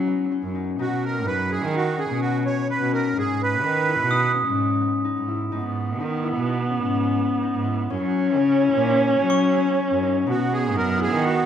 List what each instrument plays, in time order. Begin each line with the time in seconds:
Already playing: cello F#3, harp C#4 D#4
0.07 harp B3
0.32 harp C#4
0.43 cello F#2
0.55 harp D#4
0.78 cello B2, harp D#4, accordion F#4
0.90 cello B2
1.05 accordion A#4
1.26 cello F#2, harp D#4, accordion B4
1.51 harp E4, accordion G#4
1.61 cello D#3
1.74 harp D#4, accordion F#4
1.98 harp C#4, accordion G#4
2.09 cello B2
2.21 accordion F#4
2.45 harp B3, accordion C#5
2.69 harp C#4, accordion B4
2.81 cello B2
2.93 harp D#4, accordion A#4
3.16 cello G#2, harp D#4, accordion G#4
3.28 cello G#2
3.42 accordion B4
3.64 cello D#3, harp D#4
3.87 harp E4
3.99 cello B2
4.11 harp D#4, glockenspiel D#6
4.34 harp C#4
4.46 cello G#2
4.81 harp B3
5.04 harp D#4
5.17 cello G#2
5.28 harp E4
5.52 cello G#2, viola B3, harp D#4
5.65 cello G#2
6.00 cello D#3, harp D#4
6.23 harp E4
6.36 cello B2
6.47 harp D#4
6.71 harp C#4
6.83 cello G#2
7.19 harp B3
7.42 harp D#4
7.55 cello G#2
7.65 harp E4
7.90 cello F#2, viola C#4, harp C#4
8.02 cello F#3
8.37 cello C#3, harp C#4
8.61 harp E4
8.72 cello A#2
8.85 harp D#4
9.09 harp C#4
9.19 cello F#3
9.30 glockenspiel C#6
9.56 harp B3
9.79 harp C#4
9.91 cello F#2
10.03 harp D#4
10.26 cello B2, viola B3, harp D#4, accordion F#4
10.39 cello B2
10.53 accordion G#4
10.74 cello F#2, harp D#4, accordion A#4
10.98 harp E4
11.02 accordion G#4
11.10 cello D#3
11.21 harp D#4, accordion F#4